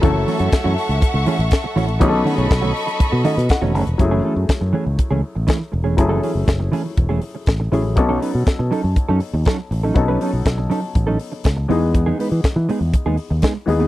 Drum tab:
HH |x-oxx-oxx-oxx-ox|x-oxx-oxx-oxx-ox|x---x---x---x---|x-o-x-o-x-o-x-o-|
SD |----o-------o---|----o-------o---|----o-------o---|----o-------o---|
BD |o---o---o---o---|o---o---o---o---|o---o---o---o---|o---o---o---o---|

HH |x-o-x-o-x-o-x-o-|x-o-x-o-x-o-x-o-|x-o-x-o-x-o-x-o-|
SD |----o-------o---|----o-------o---|----o-------o---|
BD |o---o---o---o---|o---o---o---o---|o---o---o---o---|